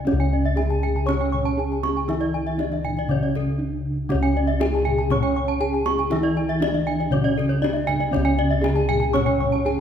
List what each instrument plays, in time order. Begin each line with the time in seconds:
Already playing: kettle gongs C#3
0.05 bronze metallophone C#3 C#4 C#5, kettle gongs C#4, kendang high
0.13 kettle gongs C#2
0.20 bronze metallophone G#5
0.33 bronze metallophone D5
0.46 bronze metallophone E5
0.56 kettle gongs D4, bronze metallophone G#4 G#5, kendang high
0.70 bronze metallophone A5, kendang slap
0.83 bronze metallophone G#5, kendang low
0.96 bronze metallophone A5, kendang slap
1.06 bronze metallophone C#4 C#5 C#6, kendang high, kendang low
1.21 bronze metallophone G#5, kendang slap
1.32 bronze metallophone C#6, kendang low
1.45 bronze metallophone A5, kendang slap
1.57 kettle gongs D4, bronze metallophone G#4 G#5
1.72 bronze metallophone A5, kendang slap
1.83 bronze metallophone C#6, kendang high
1.96 bronze metallophone G#5, kendang slap
2.08 bronze metallophone E3 E4 E5, kettle gongs E4, kendang high
2.21 bronze metallophone D5, kendang slap
2.34 bronze metallophone G#5
2.46 bronze metallophone E5, kendang slap
2.58 kettle gongs D4, bronze metallophone D4 D5, kendang high
2.72 bronze metallophone E5, kendang slap
2.84 bronze metallophone G#5, kendang low
2.97 bronze metallophone D5, kendang slap
3.08 kettle gongs C#3, bronze metallophone C#3 C#4 C#5, kendang low
3.23 bronze metallophone D5, kendang slap
3.35 bronze metallophone A4, kendang low
3.58 kettle gongs D4, bronze metallophone D4
4.09 bronze metallophone C#3 C#4 C#5, kettle gongs C#4, kendang high
4.14 kettle gongs C#2
4.23 bronze metallophone G#5
4.37 bronze metallophone D5
4.47 bronze metallophone E5, kendang slap
4.60 kettle gongs D4, bronze metallophone G#4 G#5, kendang high
4.73 bronze metallophone A5, kendang slap
4.85 bronze metallophone G#5, kendang low
4.99 bronze metallophone A5, kendang slap
5.10 bronze metallophone C#4 C#5 C#6, kendang high, kendang low
5.23 bronze metallophone G#5, kendang slap
5.36 bronze metallophone C#6
5.48 bronze metallophone A5
5.60 kettle gongs D4, bronze metallophone G#4 G#5
5.73 bronze metallophone A5, kendang slap
5.86 bronze metallophone C#6, kendang high
5.99 bronze metallophone G#5, kendang slap
6.10 bronze metallophone E3 E4 E5, kettle gongs E4, kendang high
6.23 bronze metallophone D5
6.37 bronze metallophone G#5
6.49 bronze metallophone E5, kendang slap
6.60 bronze metallophone D4 D5, kettle gongs D4, kendang high
6.74 bronze metallophone E5, kendang slap
6.87 bronze metallophone G#5
7.00 bronze metallophone D5, kendang slap
7.11 kettle gongs C#3, bronze metallophone C#3 C#4 C#5, kendang low
7.24 bronze metallophone D5, kendang slap
7.38 bronze metallophone A4, kendang low
7.49 bronze metallophone C#5, kendang slap
7.62 bronze metallophone D4 D5, kettle gongs D4, kendang high
7.73 bronze metallophone E5, kendang slap
7.87 bronze metallophone G#5, kendang low
8.00 bronze metallophone D5, kendang slap
8.11 bronze metallophone C#3 C#4 C#5, kettle gongs C#4, kendang high
8.17 kettle gongs C#2
8.25 bronze metallophone G#5
8.39 bronze metallophone D5
8.51 bronze metallophone E5, kendang slap
8.61 kettle gongs D4, bronze metallophone G#4 G#5, kendang high
8.76 bronze metallophone A5, kendang slap
8.89 bronze metallophone G#5, kendang low
9.00 bronze metallophone A5, kendang slap
9.13 bronze metallophone C#4 C#5 C#6, kendang high, kendang low
9.26 bronze metallophone G#5, kendang slap
9.40 bronze metallophone C#6, kendang low
9.52 bronze metallophone A5, kendang slap
9.65 kettle gongs D4, bronze metallophone G#4 G#5, kendang low